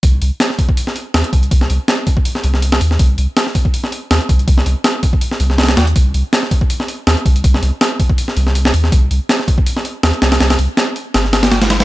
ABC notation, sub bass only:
X:1
M:4/4
L:1/8
Q:"Swing 16ths" 1/4=162
K:Gphr
V:1 name="Sub bass" clef=bass
C,, C,, z4 E,, C,, | C,, C,, z3 C,,2 E,, | C,, C,, z4 E,, C,, | C,, C,, z3 C,,2 E,, |
C,, C,, z4 E,, C,, | C,, C,, z3 C,,2 E,, | C,, C,, z4 E,, C,, | C,, C,, z2 G,,,4 |]